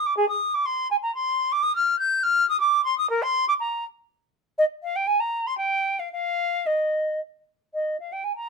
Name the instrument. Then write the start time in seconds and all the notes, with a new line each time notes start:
flute
0.06 D6
0.17 G#4
0.29 D#6
0.54 D6
0.66 C6
0.91 G#5
1.03 A#5
1.15 C6
1.52 D6
1.63 D#6
1.76 F6
1.99 G6
2.23 F6
2.49 D#6
2.60 D6
2.85 C6
2.98 D#6
3.10 A#4
3.23 C6
3.48 D6
3.60 A#5
4.58 D#5
4.83 F5
4.96 G5
5.07 G#5
5.20 A#5
5.47 C6
5.58 G5
5.99 F5
6.12 F5
6.66 D#5
7.74 D#5
8.00 F5
8.13 G5
8.24 G#5
8.36 A#5